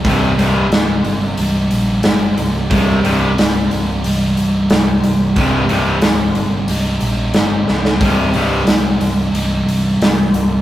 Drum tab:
HH |o-o-o-o-o-o-o-o-|o-o-o-o-o-o-o-o-|o-o-o-o-o-o-o---|o-o-o-o-o-o-o-o-|
SD |----o-------o---|----o-------o---|----o-------o-oo|----o-------o---|
BD |o---------------|o---------------|o---------------|o---------------|